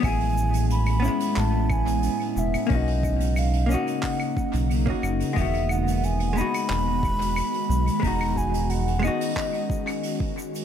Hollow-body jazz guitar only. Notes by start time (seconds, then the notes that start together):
0.00 B3 C#4
0.05 E4 G#4
1.00 B3 C#4
1.05 G#3 E4
2.67 A#3 C#4
2.71 D#4 F#4
3.66 A#3 C#4
3.71 D#4 F#4
4.86 A#3 C#4 D#4
4.90 F#4
5.33 G#3 B3
5.38 D#3 F#4
6.33 G#3 B3
6.38 D#4 F#4
8.00 G#3 B3
8.05 D#4 F#4
8.99 G#3 B3
9.05 D#4 F#4